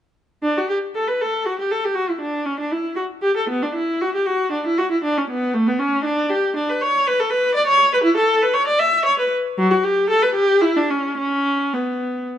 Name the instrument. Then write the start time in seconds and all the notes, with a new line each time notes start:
viola
0.42 D4
0.57 F#4
0.69 G4
0.95 A4
1.08 B4
1.21 A4
1.45 F#4
1.59 G4
1.71 A4
1.84 G4
1.95 F#4
2.09 E4
2.21 D4
2.45 C#4
2.60 D4
2.71 E4
2.96 F#4
3.22 G4
3.37 A4
3.49 B3
3.63 D4
3.75 E4
4.01 F#4
4.15 G4
4.26 F#4
4.52 D4
4.66 E4
4.78 F#4
4.91 E4
5.04 D4
5.18 C#4
5.30 B3
5.54 A3
5.67 B3
5.79 C#4
6.05 D4
6.29 G4
6.56 D4
6.69 B4
6.81 C#5
7.07 B4
7.20 A4
7.30 B4
7.55 D5
7.67 C#5
7.93 B4
8.03 E4
8.17 A4
8.42 B4
8.54 C#5
8.67 D5
8.79 E5
9.05 C#5
9.19 B4
9.58 F#3
9.71 F#4
9.84 G4
10.10 A4
10.22 B4
10.34 G4
10.61 E4
10.76 D4
10.90 C#4
11.17 C#4
11.73 B3